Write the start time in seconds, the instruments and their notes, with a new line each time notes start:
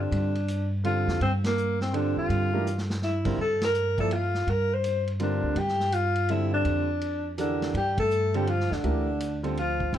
Already playing: grand piano D3 G3 C4 F4 A4
0.01 alto saxophone D4
0.11 upright bass G2, ride
0.35 ride
0.48 hi-hat pedal, ride
0.84 grand piano D3 G3 C4 F4 A4, alto saxophone F4, ride
1.07 upright bass F2, snare
1.21 upright bass G2, alto saxophone C4, ride
1.44 alto saxophone A#3, snare, ride
1.57 hi-hat pedal
1.81 alto saxophone C4, snare
1.93 grand piano D3 G3 C4 F4 A4, alto saxophone D4, ride
2.18 alto saxophone F4
2.29 upright bass G2, ride
2.53 grand piano E3 A3 D4 G4 A#4
2.67 hi-hat pedal
2.78 snare
2.90 snare
3.02 alto saxophone E4, snare
3.25 grand piano D3 G3 C4 F4 A#4, kick, crash
3.37 upright bass G2, alto saxophone A4
3.61 alto saxophone A#4, snare, ride
3.74 hi-hat pedal
3.98 grand piano F3 A#3 E4 A4 D5, alto saxophone A4, kick, ride
4.11 alto saxophone F4, ride
4.34 snare
4.47 upright bass G2, alto saxophone A#4, ride
4.74 alto saxophone C5
4.84 hi-hat pedal, ride
5.07 ride
5.20 grand piano D3 G3 C4 F4 A#4, alto saxophone D4, ride
5.43 upright bass D2
5.55 upright bass G2, alto saxophone G4, ride
5.68 snare
5.80 snare
5.92 alto saxophone F4, hi-hat pedal, ride
6.15 ride
6.29 grand piano D3 G3 C4 F4 A4, alto saxophone E4, ride
6.54 alto saxophone D4
6.65 upright bass F2, ride
7.01 ride
7.38 tenor saxophone D3, grand piano E3 D4 G4 A4 A#4, alto saxophone D4, hi-hat pedal, ride
7.62 snare, ride
7.74 upright bass G2, tenor saxophone G3, alto saxophone G4, ride
7.98 tenor saxophone A3, alto saxophone A4, kick, ride
8.10 hi-hat pedal
8.34 grand piano D3 G3 C4 F4 A4, tenor saxophone G3, alto saxophone G4, ride
8.47 tenor saxophone F3, alto saxophone F4, ride
8.60 snare
8.71 upright bass F2, tenor saxophone D3, alto saxophone D4, snare
8.83 upright bass D2, grand piano E3 A3 D4 G4 A#4, ride
9.20 hi-hat pedal, ride
9.43 grand piano D3 G3 C4 F4 A4, ride
9.57 tenor saxophone F3, alto saxophone F4, ride
9.80 kick
9.93 upright bass G1, tenor saxophone C3, ride